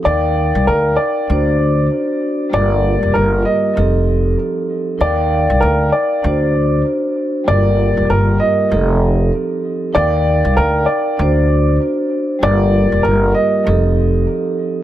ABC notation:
X:1
M:4/4
L:1/16
Q:"Swing 16ths" 1/4=97
K:Gm
V:1 name="Upright piano"
d4 B2 d6 z4 | d4 B2 e6 z4 | d4 B2 d6 z4 | d4 B2 e6 z4 |
d4 B2 d6 z4 | d4 B2 e6 z4 |]
V:2 name="Vibraphone"
[EBdfg]8 [D^Fc]8 | [G,B,FGB]8 [F,CEGA]8 | [EBdfg]8 [D^Fc]8 | [G,B,FGB]8 [F,CEGA]8 |
[EBdfg]8 [D^Fc]8 | [G,B,FGB]8 [F,CEGA]8 |]
V:3 name="Upright bass" clef=bass
E,,3 C,, D,,2 z2 D,,4 z4 | G,,,3 F,,, G,,,2 z2 F,,,4 z4 | E,,3 C,, D,,2 z2 D,,4 z4 | G,,,3 F,,, G,,,2 z2 F,,,4 z4 |
E,,3 C,, D,,2 z2 D,,4 z4 | G,,,3 F,,, G,,,2 z2 F,,,4 z4 |]